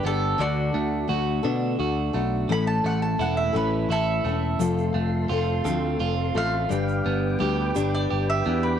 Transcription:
0.00 0.34 G1 medium
0.00 0.40 D4 medium
0.00 0.40 G4 medium
0.00 0.39 B4 medium
0.05 0.40 B3 medium
0.05 0.38 D4 soft
0.05 0.39 G4 medium
0.05 0.40 A4 loud
0.38 0.70 D2 medium
0.38 1.09 D3 medium
0.38 2.15 D3 medium
0.38 1.07 A3 medium
0.38 1.07 D4 medium
0.38 1.06 D4 medium
0.38 1.08 F#4 medium
0.38 1.09 F#4 loud
0.38 1.10 A4 medium
0.74 1.05 D2 medium
0.74 2.14 A3 medium
1.08 1.40 D2 medium
1.08 1.43 A3 medium
1.08 1.43 D4 medium
1.08 1.78 F#4 medium
1.08 1.42 F#4 medium
1.08 1.42 A4 medium
1.43 1.75 B2 medium
1.43 2.15 D3 medium
1.43 2.49 A3 medium
1.43 2.15 D4 medium
1.43 2.50 D4 medium
1.43 2.13 F#4 medium
1.43 2.13 A4 medium
1.79 2.10 D2 medium
1.79 2.50 F#4 medium
2.13 2.45 B1 medium
2.13 2.84 A3 medium
2.13 2.50 D4 soft
2.13 2.50 F#4 medium
2.13 2.49 A4 medium
2.49 2.80 A1 medium
2.49 3.20 A2 medium
2.49 4.25 A2 medium
2.49 3.20 E3 medium
2.49 3.19 A3 medium
2.49 3.19 C#4 medium
2.49 3.20 E4 medium
2.49 3.22 A4 medium
2.49 2.67 B5 loud
2.67 2.84 A5 medium
2.84 3.15 A1 medium
2.84 4.23 A3 medium
2.84 3.02 F#5 medium
3.02 3.19 A5 medium
3.19 3.50 E1 medium
3.19 3.53 A3 medium
3.19 3.53 C#4 medium
3.19 3.89 E4 medium
3.19 3.52 E4 medium
3.19 3.51 A4 medium
3.19 3.37 F#5 medium
3.37 3.54 E5 medium
3.53 3.85 A1 medium
3.53 4.26 A2 medium
3.53 4.25 E3 medium
3.53 4.25 A3 medium
3.53 4.25 C#4 medium
3.53 4.60 C#4 medium
3.53 4.25 E4 medium
3.53 4.24 A4 medium
3.53 3.90 B4 medium
3.89 4.20 A1 medium
3.89 4.61 E4 medium
3.89 5.98 A4 medium
3.89 5.97 E5 medium
4.24 4.55 E1 medium
4.24 4.60 A3 medium
4.24 4.60 C#4 soft
4.24 4.60 E4 soft
4.24 4.59 A4 soft
4.29 4.59 A3 soft
4.59 4.90 F1 medium
4.59 6.35 F2 medium
4.59 5.30 F3 medium
4.59 5.28 A3 medium
4.59 5.29 C4 medium
4.59 5.30 F4 medium
4.59 6.70 F4 medium
4.59 5.31 A4 medium
4.59 6.69 A4 medium
4.59 6.69 C6 medium
4.59 shaker loud
4.78 shaker soft
4.94 5.25 F1 medium
4.94 6.35 A3 medium
5.29 5.60 F1 medium
5.29 5.65 A3 medium
5.29 5.65 C4 medium
5.29 5.99 F4 medium
5.29 5.64 F4 medium
5.29 5.63 A4 medium
5.64 5.95 D2 medium
5.64 6.37 F3 medium
5.64 6.36 A3 medium
5.64 6.70 C4 medium
5.64 6.36 C4 medium
5.64 6.35 F4 medium
5.64 6.33 A4 medium
5.64 shaker medium
5.99 6.30 F1 medium
5.99 6.71 F4 medium
6.35 6.66 A1 medium
6.35 6.71 A3 medium
6.35 6.69 C4 soft
6.35 6.70 F4 medium
6.35 6.70 A4 medium
6.35 7.90 F5 loud
6.69 7.01 G1 medium
6.69 8.46 G2 medium
6.69 7.38 G3 medium
6.69 7.39 D4 medium
6.69 7.40 G4 medium
6.69 7.40 B4 medium
6.69 8.79 B4 medium
6.69 8.79 G5 medium
6.69 8.79 D6 medium
6.69 shaker medium
6.89 shaker soft
7.06 7.36 G1 medium
7.06 8.44 B3 medium
7.39 7.71 D2 medium
7.39 7.75 G3 medium
7.39 7.75 D4 medium
7.39 8.09 G4 medium
7.39 7.74 G4 medium
7.39 7.73 B4 medium
7.74 8.06 G1 medium
7.74 8.46 G3 medium
7.74 8.79 D4 medium
7.74 8.46 D4 medium
7.74 8.45 G4 medium
7.74 8.43 B4 medium
7.74 shaker medium
7.95 8.28 D5 medium
8.11 8.41 G1 medium
8.11 8.79 G4 medium
8.30 8.63 E5 medium
8.44 8.76 E2 medium
8.44 8.79 B3 medium
8.44 8.79 D4 soft
8.44 8.79 G4 medium
8.44 8.79 B4 medium
8.63 8.79 B4 medium

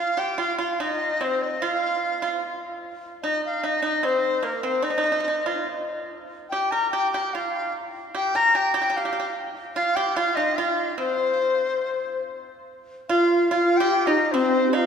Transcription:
0.00 0.16 F4 medium
0.00 0.20 F5 medium
0.17 0.37 G4 medium
0.17 0.40 G5 medium
0.38 0.57 F4 medium
0.38 0.59 F5 medium
0.58 0.78 F4 medium
0.58 0.82 F5 medium
0.80 1.18 D#4 medium
0.80 1.23 D#5 medium
1.21 1.58 C4 medium
1.21 1.44 C5 medium
1.42 1.64 D#5 medium
1.62 2.18 F4 medium
1.62 2.43 F5 medium
2.22 2.41 F4 medium
3.23 3.61 D#4 medium
3.23 3.41 D#5 medium
3.46 3.66 F5 medium
3.63 3.81 D#4 medium
3.63 3.84 D#5 medium
3.82 4.01 D#4 medium
3.82 4.07 D#5 medium
4.03 4.40 C4 medium
4.03 4.46 C5 medium
4.43 4.62 A#3 medium
4.43 4.67 A#4 medium
4.63 4.82 C4 medium
4.63 4.85 C5 medium
4.82 4.89 D#4 medium
4.82 5.67 D#5 medium
4.90 4.96 D#4 soft
4.98 5.03 D#4 medium
5.04 5.11 D#4 soft
5.12 5.19 D#4 medium
5.20 5.27 D#4 soft
5.28 5.35 D#4 medium
5.46 5.65 F4 medium
6.50 6.71 G4 medium
6.50 6.73 G5 medium
6.71 6.92 A#4 medium
6.71 6.90 A#5 medium
6.91 7.12 G4 medium
6.91 7.11 G5 medium
7.12 7.33 G4 medium
7.12 7.35 G5 medium
7.34 7.59 F4 medium
7.34 7.75 F5 medium
7.59 7.73 D#4 medium
8.15 8.34 G4 medium
8.15 8.37 G5 medium
8.35 8.54 A#4 medium
8.35 8.57 A#5 medium
8.55 8.73 G4 medium
8.55 8.75 G5 medium
8.74 8.80 G4 medium
8.74 8.98 G5 medium
8.81 8.89 G4 soft
8.90 8.96 G4 medium
8.97 9.04 G4 soft
8.97 9.37 F5 medium
9.05 9.11 G4 medium
9.13 9.18 G4 soft
9.20 9.26 G4 medium
9.75 9.95 F4 medium
9.75 9.97 F5 medium
9.96 10.15 G4 medium
9.96 10.18 G5 medium
10.16 10.36 F4 medium
10.16 10.37 F5 medium
10.35 10.56 D#4 medium
10.35 10.58 D#5 medium
10.56 10.96 F4 medium
10.56 10.98 F5 medium
10.98 12.21 C4 medium
10.98 12.21 C5 medium
13.09 13.49 F4 medium
13.09 13.49 F5 medium
13.51 13.78 F4 medium
13.51 13.82 F4 medium
13.51 13.78 F5 medium
13.77 14.06 G4 medium
13.77 14.10 G4 medium
13.77 14.07 G5 medium
14.06 14.33 D#4 medium
14.06 14.36 D#4 medium
14.06 14.25 D#5 medium
14.25 14.34 D#5 medium
14.32 14.72 C4 medium
14.32 14.70 C4 medium
14.32 14.76 C5 medium
14.69 14.78 G4 medium
14.73 14.86 D#4 medium
14.73 14.86 F4 medium
14.73 14.86 F5 medium

